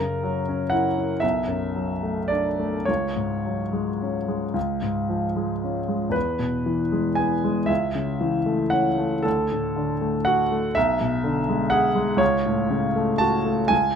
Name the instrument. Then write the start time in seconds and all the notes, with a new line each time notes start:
grand piano
Already playing: F#2 A#4
0.01 C#3
0.23 F#3
0.49 C#4
0.70 E4 F#5
0.97 C#4
1.20 B1 E5
1.47 F#2
1.75 F#3
2.03 A3
2.28 D4 D5
2.59 A3
2.85 C#2 C#5
3.16 G#2
3.45 F#3
3.73 G#3
4.02 C#4
4.28 G#3
4.54 C#2
4.82 G#2
5.09 F3
5.36 G#3
5.64 C#4
5.88 G#3
6.09 E2 B4
6.39 B2
6.66 E3
6.92 G#3
7.15 B3 G#5
7.44 G#3
7.66 C#2 E5
7.95 C#3
8.21 E3
8.46 A3
8.70 C#4 F#5
8.98 A3
9.23 D2 A4
9.52 A2
9.76 D3
10.01 A3
10.25 F#4 F#5
10.52 A3
10.75 B1 E5
11.01 B2
11.24 D3
11.49 G#3
11.70 G#4 F#5
11.95 G#3
12.17 C#2 C#5
12.46 A2
12.70 C#3
12.96 A3
13.18 F#4 A5
13.45 A3
13.68 C#2 G#5